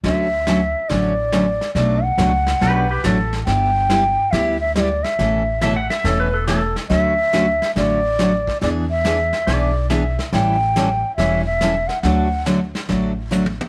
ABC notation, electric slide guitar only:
X:1
M:4/4
L:1/16
Q:"Swing" 1/4=140
K:D
V:1 name="Electric slide guitar"
z16 | z8 (3[GB]2 [GB]2 [GB]2 A3 z | z16 | z4 (3e2 f2 e2 (3A2 B2 A2 A2 z2 |
z16 | z8 d4 e3 z | z16 | z16 |]